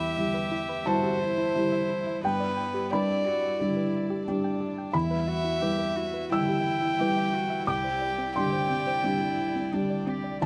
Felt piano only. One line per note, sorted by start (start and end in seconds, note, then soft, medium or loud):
0.00 0.15 E2 medium
0.00 0.82 B5 medium
0.18 0.82 G3 soft
0.18 0.82 E4 soft
0.18 0.83 G4 soft
0.86 1.51 G3 soft
0.86 1.52 E4 soft
0.86 2.19 A5 medium
1.56 2.19 G3 soft
1.56 2.19 E4 soft
1.56 2.20 G4 soft
2.24 2.90 G2 medium
2.24 2.88 G5 medium
2.93 3.56 G3 soft
2.93 3.57 D4 soft
2.93 3.57 B4 soft
2.93 3.90 B5 medium
3.61 4.24 G3 soft
3.61 4.24 D4 soft
3.61 4.24 G4 medium
4.28 4.90 G3 medium
4.28 4.90 D4 soft
4.28 4.91 G4 medium
4.93 5.60 E2 medium
4.93 6.28 B5 medium
5.62 6.28 G3 soft
5.62 6.28 E4 soft
5.62 6.28 B4 soft
6.32 6.96 G3 soft
6.32 6.96 E4 soft
6.32 6.96 G4 medium
6.32 7.64 E6 medium
7.00 7.64 G3 soft
7.00 7.64 E4 medium
7.00 7.65 B4 medium
7.67 8.34 C2 medium
7.67 8.32 D6 medium
8.36 9.01 G3 soft
8.36 9.01 D4 soft
8.36 9.01 G4 medium
8.36 10.03 C6 medium
9.04 9.69 G3 soft
9.04 9.69 D4 soft
9.04 9.69 G4 soft
9.73 10.38 G3 medium
9.73 10.38 D4 soft
9.73 10.38 G4 medium
10.42 10.46 E2 medium
10.42 10.46 A5 medium